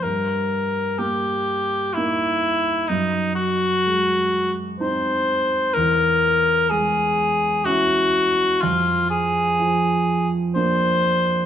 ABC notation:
X:1
M:3/4
L:1/16
Q:1/4=63
K:C#dor
V:1 name="Cor anglais"
A4 =G4 E4 | D2 F4- F z ^B4 | A4 G4 F4 | ^E2 G4- G z ^B4 |]
V:2 name="Grand piano"
=G,,4 A,4 [A,D]4 | F,,4 G,4 [^B,D]4 | E,,4 G,4 [CE]4 | ^E,,4 ^E,4 [A,=D]4 |]